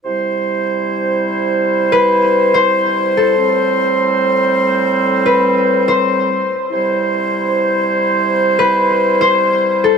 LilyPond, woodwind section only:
\new Staff \with { instrumentName = "Woodwind section" } { \clef bass \time 4/4 \key c \major \tempo 4 = 144 << { c''1~ | c''1~ | c''1~ | c''1 |
c''1~ | c''1 | } \\ { <c g e'>1~ | <c g e'>1 | <a, g c'>1~ | <a, g c'>1 |
<c g e'>1~ | <c g e'>1 | } >> }